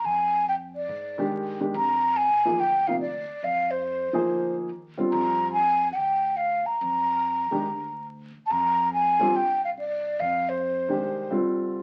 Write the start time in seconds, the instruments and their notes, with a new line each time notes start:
0.04 upright bass F2, flute G#5
0.49 flute G5
0.76 flute D5
0.88 upright bass G#2
1.18 grand piano D#3 G#3 D4 G4
1.32 upright bass G2
1.60 grand piano D#3 G#3 D4 G4
1.74 upright bass F2, flute A#5
2.17 flute G#5
2.44 upright bass E2, grand piano F3 A#3 D#4 G#4
2.58 upright bass D2, flute G5
2.87 grand piano C3 F3 A#3 D#4, flute F5
3.00 flute D5
3.29 muted upright bass stroke
3.43 upright bass F2, flute F5
3.71 flute C5
4.13 upright bass E2, grand piano F3 A#3 D#4 G#4
4.27 upright bass D2
4.69 upright bass D#2
4.98 grand piano D3 G3 C4 F4
5.12 upright bass F2, flute A#5
5.53 flute G#5
5.93 flute F#5 G5
5.97 upright bass D2
6.37 flute F5
6.66 flute A#5, muted upright bass stroke
6.81 upright bass F2
7.51 upright bass F#2, grand piano D#3 G#3 D4 G4
7.66 upright bass D2
8.36 muted upright bass stroke
8.46 flute A5
8.50 upright bass F2, flute A#5
8.93 flute G#5
9.19 grand piano D3 G3 C4 F4
9.34 upright bass C2, flute G5
9.65 flute F5
9.79 flute D5
10.19 upright bass F2, flute F5
10.49 flute C5
10.89 grand piano D#3 G#3 D4 G4
11.04 upright bass C2
11.31 grand piano D3 G3 C4 F4